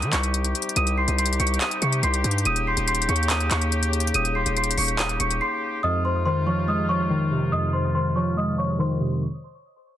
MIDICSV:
0, 0, Header, 1, 6, 480
1, 0, Start_track
1, 0, Key_signature, -4, "minor"
1, 0, Tempo, 422535
1, 867, Time_signature, 4, 2, 24, 8
1, 11326, End_track
2, 0, Start_track
2, 0, Title_t, "Celesta"
2, 0, Program_c, 0, 8
2, 142, Note_on_c, 0, 97, 76
2, 151, Note_on_c, 0, 85, 61
2, 821, Note_off_c, 0, 97, 0
2, 826, Note_off_c, 0, 85, 0
2, 870, Note_on_c, 0, 99, 98
2, 879, Note_on_c, 0, 87, 78
2, 1064, Note_off_c, 0, 99, 0
2, 1069, Note_off_c, 0, 87, 0
2, 1109, Note_on_c, 0, 96, 86
2, 1118, Note_on_c, 0, 84, 62
2, 1304, Note_off_c, 0, 96, 0
2, 1309, Note_off_c, 0, 84, 0
2, 1345, Note_on_c, 0, 96, 83
2, 1354, Note_on_c, 0, 84, 60
2, 1542, Note_off_c, 0, 96, 0
2, 1547, Note_off_c, 0, 84, 0
2, 1587, Note_on_c, 0, 97, 77
2, 1596, Note_on_c, 0, 85, 58
2, 1783, Note_off_c, 0, 97, 0
2, 1788, Note_off_c, 0, 85, 0
2, 1825, Note_on_c, 0, 99, 92
2, 1834, Note_on_c, 0, 87, 73
2, 2021, Note_off_c, 0, 99, 0
2, 2026, Note_off_c, 0, 87, 0
2, 2071, Note_on_c, 0, 97, 94
2, 2080, Note_on_c, 0, 85, 64
2, 2265, Note_off_c, 0, 97, 0
2, 2270, Note_off_c, 0, 85, 0
2, 2310, Note_on_c, 0, 96, 85
2, 2319, Note_on_c, 0, 84, 70
2, 2760, Note_off_c, 0, 96, 0
2, 2764, Note_off_c, 0, 84, 0
2, 2794, Note_on_c, 0, 99, 108
2, 2803, Note_on_c, 0, 87, 84
2, 2987, Note_off_c, 0, 99, 0
2, 2992, Note_off_c, 0, 87, 0
2, 3037, Note_on_c, 0, 96, 83
2, 3046, Note_on_c, 0, 84, 68
2, 3229, Note_off_c, 0, 96, 0
2, 3234, Note_off_c, 0, 84, 0
2, 3268, Note_on_c, 0, 96, 96
2, 3277, Note_on_c, 0, 84, 75
2, 3463, Note_off_c, 0, 96, 0
2, 3469, Note_off_c, 0, 84, 0
2, 3508, Note_on_c, 0, 97, 77
2, 3518, Note_on_c, 0, 85, 59
2, 3703, Note_off_c, 0, 97, 0
2, 3709, Note_off_c, 0, 85, 0
2, 3753, Note_on_c, 0, 99, 91
2, 3763, Note_on_c, 0, 87, 71
2, 3946, Note_off_c, 0, 99, 0
2, 3952, Note_off_c, 0, 87, 0
2, 3987, Note_on_c, 0, 97, 81
2, 3996, Note_on_c, 0, 85, 63
2, 4664, Note_off_c, 0, 97, 0
2, 4669, Note_off_c, 0, 85, 0
2, 4711, Note_on_c, 0, 99, 110
2, 4720, Note_on_c, 0, 87, 76
2, 4905, Note_off_c, 0, 99, 0
2, 4910, Note_off_c, 0, 87, 0
2, 4944, Note_on_c, 0, 96, 81
2, 4954, Note_on_c, 0, 84, 61
2, 5141, Note_off_c, 0, 96, 0
2, 5147, Note_off_c, 0, 84, 0
2, 5191, Note_on_c, 0, 96, 84
2, 5200, Note_on_c, 0, 84, 63
2, 5385, Note_off_c, 0, 96, 0
2, 5390, Note_off_c, 0, 84, 0
2, 5428, Note_on_c, 0, 97, 80
2, 5437, Note_on_c, 0, 85, 59
2, 5623, Note_off_c, 0, 97, 0
2, 5628, Note_off_c, 0, 85, 0
2, 5669, Note_on_c, 0, 99, 91
2, 5678, Note_on_c, 0, 87, 66
2, 5864, Note_off_c, 0, 99, 0
2, 5869, Note_off_c, 0, 87, 0
2, 5905, Note_on_c, 0, 97, 85
2, 5914, Note_on_c, 0, 85, 66
2, 6101, Note_off_c, 0, 97, 0
2, 6107, Note_off_c, 0, 85, 0
2, 6146, Note_on_c, 0, 96, 93
2, 6155, Note_on_c, 0, 84, 72
2, 6597, Note_off_c, 0, 96, 0
2, 6602, Note_off_c, 0, 84, 0
2, 6624, Note_on_c, 0, 87, 97
2, 6633, Note_on_c, 0, 75, 82
2, 6821, Note_off_c, 0, 87, 0
2, 6826, Note_off_c, 0, 75, 0
2, 6871, Note_on_c, 0, 84, 83
2, 6880, Note_on_c, 0, 72, 66
2, 7065, Note_off_c, 0, 84, 0
2, 7070, Note_off_c, 0, 72, 0
2, 7106, Note_on_c, 0, 84, 88
2, 7114, Note_on_c, 0, 72, 70
2, 7302, Note_off_c, 0, 84, 0
2, 7307, Note_off_c, 0, 72, 0
2, 7345, Note_on_c, 0, 85, 70
2, 7355, Note_on_c, 0, 73, 61
2, 7542, Note_off_c, 0, 85, 0
2, 7547, Note_off_c, 0, 73, 0
2, 7591, Note_on_c, 0, 87, 81
2, 7599, Note_on_c, 0, 75, 65
2, 7785, Note_off_c, 0, 87, 0
2, 7790, Note_off_c, 0, 75, 0
2, 7827, Note_on_c, 0, 85, 83
2, 7837, Note_on_c, 0, 73, 57
2, 8504, Note_off_c, 0, 85, 0
2, 8509, Note_off_c, 0, 73, 0
2, 8545, Note_on_c, 0, 87, 95
2, 8554, Note_on_c, 0, 75, 78
2, 8741, Note_off_c, 0, 87, 0
2, 8747, Note_off_c, 0, 75, 0
2, 8782, Note_on_c, 0, 84, 77
2, 8791, Note_on_c, 0, 72, 57
2, 8980, Note_off_c, 0, 84, 0
2, 8985, Note_off_c, 0, 72, 0
2, 9029, Note_on_c, 0, 84, 80
2, 9038, Note_on_c, 0, 72, 62
2, 9224, Note_off_c, 0, 84, 0
2, 9229, Note_off_c, 0, 72, 0
2, 9266, Note_on_c, 0, 85, 70
2, 9276, Note_on_c, 0, 73, 61
2, 9462, Note_off_c, 0, 85, 0
2, 9468, Note_off_c, 0, 73, 0
2, 9512, Note_on_c, 0, 87, 81
2, 9521, Note_on_c, 0, 75, 65
2, 9705, Note_off_c, 0, 87, 0
2, 9711, Note_off_c, 0, 75, 0
2, 9750, Note_on_c, 0, 85, 80
2, 9759, Note_on_c, 0, 73, 65
2, 9944, Note_off_c, 0, 85, 0
2, 9950, Note_off_c, 0, 73, 0
2, 9994, Note_on_c, 0, 84, 96
2, 10003, Note_on_c, 0, 72, 73
2, 10442, Note_off_c, 0, 84, 0
2, 10446, Note_off_c, 0, 72, 0
2, 11326, End_track
3, 0, Start_track
3, 0, Title_t, "Woodwind section"
3, 0, Program_c, 1, 71
3, 0, Note_on_c, 1, 48, 80
3, 0, Note_on_c, 1, 55, 74
3, 0, Note_on_c, 1, 63, 78
3, 0, Note_on_c, 1, 67, 92
3, 2749, Note_off_c, 1, 48, 0
3, 2749, Note_off_c, 1, 55, 0
3, 2788, Note_on_c, 1, 58, 77
3, 2789, Note_on_c, 1, 49, 86
3, 6582, Note_off_c, 1, 63, 0
3, 6582, Note_off_c, 1, 67, 0
3, 6589, Note_off_c, 1, 49, 0
3, 6589, Note_off_c, 1, 58, 0
3, 6627, Note_on_c, 1, 48, 79
3, 6627, Note_on_c, 1, 56, 72
3, 6627, Note_on_c, 1, 63, 76
3, 6627, Note_on_c, 1, 65, 90
3, 10428, Note_off_c, 1, 65, 0
3, 10429, Note_off_c, 1, 48, 0
3, 10429, Note_off_c, 1, 56, 0
3, 10429, Note_off_c, 1, 63, 0
3, 11326, End_track
4, 0, Start_track
4, 0, Title_t, "Synth keys"
4, 0, Program_c, 2, 88
4, 6626, Note_on_c, 2, 41, 86
4, 6855, Control_c, 2, 64, 127
4, 7109, Note_on_c, 2, 51, 74
4, 7345, Note_on_c, 2, 53, 92
4, 7585, Note_on_c, 2, 56, 76
4, 7812, Note_off_c, 2, 53, 0
4, 7826, Note_off_c, 2, 41, 0
4, 7826, Note_on_c, 2, 53, 81
4, 8053, Note_off_c, 2, 51, 0
4, 8067, Note_on_c, 2, 51, 98
4, 8307, Note_on_c, 2, 48, 79
4, 8544, Note_on_c, 2, 41, 83
4, 8786, Note_off_c, 2, 56, 0
4, 9012, Note_off_c, 2, 51, 0
4, 9025, Note_on_c, 2, 51, 76
4, 9026, Note_off_c, 2, 53, 0
4, 9266, Note_on_c, 2, 53, 94
4, 9507, Note_off_c, 2, 48, 0
4, 9507, Note_on_c, 2, 56, 78
4, 9731, Note_off_c, 2, 53, 0
4, 9745, Note_off_c, 2, 41, 0
4, 9745, Note_on_c, 2, 53, 75
4, 9969, Note_off_c, 2, 51, 0
4, 9982, Note_on_c, 2, 51, 99
4, 10225, Note_on_c, 2, 48, 80
4, 10465, Note_off_c, 2, 51, 0
4, 10466, Note_off_c, 2, 48, 0
4, 10466, Note_off_c, 2, 53, 0
4, 10467, Note_off_c, 2, 56, 0
4, 10481, Control_c, 2, 64, 0
4, 11326, End_track
5, 0, Start_track
5, 0, Title_t, "808-style bass"
5, 0, Program_c, 3, 38
5, 26, Note_on_c, 3, 51, 99
5, 140, Note_off_c, 3, 51, 0
5, 146, Note_on_c, 3, 36, 107
5, 607, Note_off_c, 3, 36, 0
5, 866, Note_on_c, 3, 36, 115
5, 1212, Note_off_c, 3, 36, 0
5, 1227, Note_on_c, 3, 36, 104
5, 1572, Note_off_c, 3, 36, 0
5, 1586, Note_on_c, 3, 36, 109
5, 1817, Note_off_c, 3, 36, 0
5, 2066, Note_on_c, 3, 48, 104
5, 2297, Note_off_c, 3, 48, 0
5, 2307, Note_on_c, 3, 36, 107
5, 2537, Note_off_c, 3, 36, 0
5, 2547, Note_on_c, 3, 43, 105
5, 2777, Note_off_c, 3, 43, 0
5, 2787, Note_on_c, 3, 27, 109
5, 3133, Note_off_c, 3, 27, 0
5, 3148, Note_on_c, 3, 27, 100
5, 3493, Note_off_c, 3, 27, 0
5, 3507, Note_on_c, 3, 39, 108
5, 3968, Note_off_c, 3, 39, 0
5, 3987, Note_on_c, 3, 39, 106
5, 4678, Note_off_c, 3, 39, 0
5, 4707, Note_on_c, 3, 27, 110
5, 5052, Note_off_c, 3, 27, 0
5, 5067, Note_on_c, 3, 27, 97
5, 5412, Note_off_c, 3, 27, 0
5, 5426, Note_on_c, 3, 27, 107
5, 5887, Note_off_c, 3, 27, 0
5, 5907, Note_on_c, 3, 27, 110
5, 6137, Note_off_c, 3, 27, 0
5, 11326, End_track
6, 0, Start_track
6, 0, Title_t, "Drums"
6, 26, Note_on_c, 9, 42, 64
6, 140, Note_off_c, 9, 42, 0
6, 146, Note_on_c, 9, 42, 71
6, 147, Note_on_c, 9, 39, 86
6, 259, Note_off_c, 9, 42, 0
6, 260, Note_off_c, 9, 39, 0
6, 266, Note_on_c, 9, 42, 57
6, 380, Note_off_c, 9, 42, 0
6, 386, Note_on_c, 9, 42, 66
6, 500, Note_off_c, 9, 42, 0
6, 505, Note_on_c, 9, 42, 68
6, 619, Note_off_c, 9, 42, 0
6, 626, Note_on_c, 9, 42, 65
6, 706, Note_off_c, 9, 42, 0
6, 706, Note_on_c, 9, 42, 66
6, 786, Note_off_c, 9, 42, 0
6, 786, Note_on_c, 9, 42, 64
6, 865, Note_off_c, 9, 42, 0
6, 865, Note_on_c, 9, 42, 83
6, 979, Note_off_c, 9, 42, 0
6, 986, Note_on_c, 9, 42, 58
6, 1100, Note_off_c, 9, 42, 0
6, 1225, Note_on_c, 9, 42, 57
6, 1339, Note_off_c, 9, 42, 0
6, 1346, Note_on_c, 9, 42, 78
6, 1427, Note_off_c, 9, 42, 0
6, 1427, Note_on_c, 9, 42, 72
6, 1507, Note_off_c, 9, 42, 0
6, 1507, Note_on_c, 9, 42, 63
6, 1587, Note_off_c, 9, 42, 0
6, 1587, Note_on_c, 9, 42, 57
6, 1667, Note_off_c, 9, 42, 0
6, 1667, Note_on_c, 9, 42, 51
6, 1747, Note_off_c, 9, 42, 0
6, 1747, Note_on_c, 9, 42, 44
6, 1825, Note_on_c, 9, 39, 109
6, 1826, Note_off_c, 9, 42, 0
6, 1826, Note_on_c, 9, 42, 74
6, 1939, Note_off_c, 9, 39, 0
6, 1940, Note_off_c, 9, 42, 0
6, 1947, Note_on_c, 9, 42, 63
6, 2060, Note_off_c, 9, 42, 0
6, 2066, Note_on_c, 9, 42, 72
6, 2179, Note_off_c, 9, 42, 0
6, 2187, Note_on_c, 9, 42, 57
6, 2300, Note_off_c, 9, 42, 0
6, 2307, Note_on_c, 9, 42, 65
6, 2421, Note_off_c, 9, 42, 0
6, 2428, Note_on_c, 9, 42, 71
6, 2541, Note_off_c, 9, 42, 0
6, 2548, Note_on_c, 9, 42, 67
6, 2627, Note_off_c, 9, 42, 0
6, 2627, Note_on_c, 9, 42, 67
6, 2707, Note_off_c, 9, 42, 0
6, 2707, Note_on_c, 9, 42, 66
6, 2788, Note_off_c, 9, 42, 0
6, 2788, Note_on_c, 9, 42, 81
6, 2901, Note_off_c, 9, 42, 0
6, 2909, Note_on_c, 9, 42, 57
6, 3022, Note_off_c, 9, 42, 0
6, 3147, Note_on_c, 9, 42, 59
6, 3260, Note_off_c, 9, 42, 0
6, 3267, Note_on_c, 9, 42, 78
6, 3347, Note_off_c, 9, 42, 0
6, 3347, Note_on_c, 9, 42, 71
6, 3428, Note_off_c, 9, 42, 0
6, 3428, Note_on_c, 9, 42, 65
6, 3508, Note_off_c, 9, 42, 0
6, 3508, Note_on_c, 9, 42, 56
6, 3587, Note_off_c, 9, 42, 0
6, 3587, Note_on_c, 9, 42, 50
6, 3667, Note_off_c, 9, 42, 0
6, 3667, Note_on_c, 9, 42, 44
6, 3746, Note_on_c, 9, 39, 115
6, 3747, Note_off_c, 9, 42, 0
6, 3747, Note_on_c, 9, 42, 75
6, 3859, Note_off_c, 9, 39, 0
6, 3861, Note_off_c, 9, 42, 0
6, 3868, Note_on_c, 9, 42, 64
6, 3981, Note_off_c, 9, 42, 0
6, 3986, Note_on_c, 9, 42, 72
6, 3987, Note_on_c, 9, 39, 87
6, 4100, Note_off_c, 9, 42, 0
6, 4101, Note_off_c, 9, 39, 0
6, 4107, Note_on_c, 9, 42, 57
6, 4220, Note_off_c, 9, 42, 0
6, 4227, Note_on_c, 9, 42, 67
6, 4341, Note_off_c, 9, 42, 0
6, 4347, Note_on_c, 9, 42, 70
6, 4461, Note_off_c, 9, 42, 0
6, 4467, Note_on_c, 9, 42, 63
6, 4548, Note_off_c, 9, 42, 0
6, 4548, Note_on_c, 9, 42, 66
6, 4627, Note_off_c, 9, 42, 0
6, 4627, Note_on_c, 9, 42, 66
6, 4707, Note_off_c, 9, 42, 0
6, 4707, Note_on_c, 9, 42, 82
6, 4820, Note_off_c, 9, 42, 0
6, 4828, Note_on_c, 9, 42, 59
6, 4942, Note_off_c, 9, 42, 0
6, 5066, Note_on_c, 9, 42, 58
6, 5180, Note_off_c, 9, 42, 0
6, 5187, Note_on_c, 9, 42, 47
6, 5267, Note_off_c, 9, 42, 0
6, 5267, Note_on_c, 9, 42, 64
6, 5347, Note_off_c, 9, 42, 0
6, 5347, Note_on_c, 9, 42, 80
6, 5425, Note_on_c, 9, 46, 81
6, 5461, Note_off_c, 9, 42, 0
6, 5539, Note_off_c, 9, 46, 0
6, 5546, Note_on_c, 9, 42, 55
6, 5660, Note_off_c, 9, 42, 0
6, 5666, Note_on_c, 9, 39, 115
6, 5667, Note_on_c, 9, 42, 76
6, 5779, Note_off_c, 9, 39, 0
6, 5781, Note_off_c, 9, 42, 0
6, 5786, Note_on_c, 9, 42, 64
6, 5900, Note_off_c, 9, 42, 0
6, 5906, Note_on_c, 9, 42, 75
6, 6020, Note_off_c, 9, 42, 0
6, 6027, Note_on_c, 9, 42, 56
6, 6141, Note_off_c, 9, 42, 0
6, 11326, End_track
0, 0, End_of_file